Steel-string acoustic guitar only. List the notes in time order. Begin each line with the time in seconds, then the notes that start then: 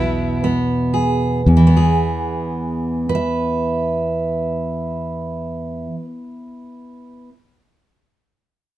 Already playing: E2 B2 B3
0.44 B3
0.94 G#4
1.47 E2
1.57 E3
1.67 B3
1.77 G#4
3.09 B4
3.15 E5